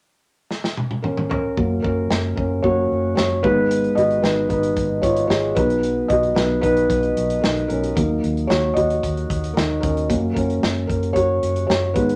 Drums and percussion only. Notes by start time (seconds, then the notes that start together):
0.51 snare
0.64 snare
0.77 high tom
0.91 high tom
1.04 mid tom
1.17 mid tom
1.31 floor tom
1.57 kick
1.84 kick
2.10 snare
2.37 kick
2.64 kick
3.17 snare
3.44 kick
3.71 closed hi-hat
3.84 closed hi-hat
3.98 closed hi-hat
4.11 closed hi-hat
4.24 snare
4.50 kick, closed hi-hat
4.63 closed hi-hat
4.77 kick, closed hi-hat
5.03 kick, closed hi-hat
5.17 closed hi-hat
5.30 snare
5.56 kick, closed hi-hat
5.70 closed hi-hat
5.83 closed hi-hat
6.10 kick, closed hi-hat
6.23 closed hi-hat
6.36 snare
6.63 kick, closed hi-hat
6.77 closed hi-hat
6.90 kick, closed hi-hat
7.03 closed hi-hat
7.17 closed hi-hat
7.30 closed hi-hat
7.44 snare
7.57 closed hi-hat
7.70 closed hi-hat
7.83 closed hi-hat
7.97 kick, closed hi-hat
8.24 closed hi-hat
8.37 closed hi-hat
8.50 snare
8.77 kick, closed hi-hat
8.90 closed hi-hat
9.03 kick, closed hi-hat
9.17 closed hi-hat
9.30 kick, closed hi-hat
9.44 closed hi-hat
9.57 snare
9.83 kick, closed hi-hat
9.97 closed hi-hat
10.10 kick, closed hi-hat
10.36 kick, closed hi-hat
10.50 closed hi-hat
10.63 snare
10.90 kick, closed hi-hat
11.03 closed hi-hat
11.16 kick, closed hi-hat
11.43 closed hi-hat
11.56 closed hi-hat
11.70 snare
11.96 kick, closed hi-hat
12.09 closed hi-hat